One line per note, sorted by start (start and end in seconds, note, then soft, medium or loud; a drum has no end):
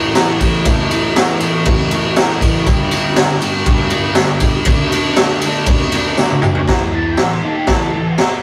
0.00 0.15 A2 medium
0.00 0.15 E3 medium
0.00 0.16 A3 medium
0.15 0.39 A2 loud
0.15 0.40 E3 loud
0.15 0.40 A3 loud
0.15 snare loud
0.15 ride loud
0.15 tambourine loud
0.40 0.64 A2 loud
0.40 0.65 E3 loud
0.40 0.65 A3 loud
0.40 kick medium
0.40 ride medium
0.40 tambourine medium
0.65 0.89 A2 loud
0.65 0.90 E3 loud
0.65 0.91 A3 loud
0.65 kick loud
0.65 ride loud
0.65 tambourine medium
0.90 1.15 A2 medium
0.90 1.17 E3 medium
0.90 1.17 A3 medium
0.90 ride medium
0.90 tambourine medium
1.16 1.39 A2 loud
1.16 1.40 E3 loud
1.16 1.41 A3 loud
1.16 snare loud
1.16 ride loud
1.16 tambourine loud
1.30 tambourine soft
1.40 1.65 A2 medium
1.40 1.66 E3 loud
1.40 1.67 A3 loud
1.40 ride medium
1.40 tambourine medium
1.65 1.89 A2 loud
1.65 1.91 E3 loud
1.65 1.92 A3 loud
1.65 kick loud
1.65 ride loud
1.90 2.16 A2 loud
1.90 2.16 E3 medium
1.90 2.18 A3 medium
1.90 ride medium
2.16 2.40 A2 loud
2.16 2.42 E3 loud
2.16 2.42 A3 loud
2.16 snare loud
2.16 ride loud
2.16 tambourine loud
2.31 tambourine soft
2.41 2.65 A2 loud
2.41 2.66 E3 loud
2.41 2.66 A3 medium
2.41 kick medium
2.41 ride medium
2.41 tambourine medium
2.66 2.91 G2 loud
2.66 2.91 D3 loud
2.66 2.93 G3 loud
2.66 kick loud
2.66 ride loud
2.66 tambourine medium
2.91 3.15 G2 medium
2.91 3.16 D3 medium
2.91 3.17 G3 loud
2.91 ride medium
2.91 tambourine medium
3.16 3.40 G2 loud
3.16 3.41 D3 loud
3.16 3.42 G3 loud
3.16 snare loud
3.16 ride loud
3.16 tambourine loud
3.30 tambourine soft
3.41 3.66 G2 medium
3.41 3.67 D3 loud
3.41 3.68 G3 loud
3.41 ride medium
3.41 tambourine medium
3.66 3.92 G2 loud
3.66 3.92 D3 loud
3.66 3.93 G3 loud
3.66 kick loud
3.66 ride loud
3.90 4.16 G2 medium
3.90 4.17 D3 medium
3.90 ride medium
3.94 4.18 G3 loud
4.15 4.41 G2 loud
4.15 4.41 D3 loud
4.15 snare loud
4.15 ride loud
4.15 tambourine medium
4.19 4.43 G3 loud
4.29 tambourine soft
4.40 4.66 G2 medium
4.40 4.66 D3 loud
4.40 4.67 G3 loud
4.40 kick medium
4.40 ride medium
4.40 tambourine medium
4.65 4.92 D3 medium
4.65 4.93 A3 loud
4.65 kick loud
4.65 ride loud
4.65 tambourine medium
4.69 4.94 D4 loud
4.92 5.18 D3 medium
4.92 5.18 A3 medium
4.92 5.19 D4 medium
4.92 ride medium
4.92 tambourine medium
5.16 5.43 D3 loud
5.16 5.45 A3 loud
5.16 snare loud
5.16 ride loud
5.16 tambourine medium
5.20 5.45 D4 loud
5.30 tambourine soft
5.41 5.67 D3 medium
5.41 ride loud
5.41 tambourine medium
5.46 5.68 A3 loud
5.46 5.69 D4 loud
5.57 tambourine soft
5.66 5.93 D3 loud
5.66 5.94 A3 loud
5.66 5.95 D4 loud
5.66 kick loud
5.66 ride loud
5.80 tambourine soft
5.92 6.17 D3 medium
5.92 6.18 A3 loud
5.92 ride medium
5.97 6.19 D4 loud
6.06 tambourine soft
6.17 6.41 D3 medium
6.17 6.42 A3 loud
6.17 6.42 D4 medium
6.17 snare medium
6.17 tambourine loud
6.30 high tom medium
6.42 6.66 D3 medium
6.42 6.67 A3 loud
6.42 6.67 D4 loud
6.42 mid tom loud
6.42 tambourine medium
6.55 floor tom loud
6.68 6.91 A2 loud
6.68 6.90 E3 loud
6.68 6.92 A3 loud
6.68 kick loud
6.68 snare loud
6.68 crash medium
6.91 7.17 E3 medium
6.91 7.17 B3 loud
6.91 7.18 E4 loud
6.91 7.06 A5 medium
7.11 7.21 G5 medium
7.17 7.38 A2 medium
7.17 7.38 E3 medium
7.17 snare loud
7.17 crash medium
7.22 7.32 E5 medium
7.32 7.44 C5 medium
7.43 7.68 D#3 medium
7.43 7.68 A#3 medium
7.43 7.68 D#4 loud
7.43 7.54 A4 medium
7.54 7.66 G4 medium
7.66 7.93 A2 medium
7.66 7.94 E3 medium
7.66 8.17 A4 loud
7.66 kick loud
7.66 snare loud
7.66 crash medium
7.71 7.94 A3 loud
7.94 8.14 A2 medium
7.94 8.15 E3 medium
8.18 snare loud
8.18 crash medium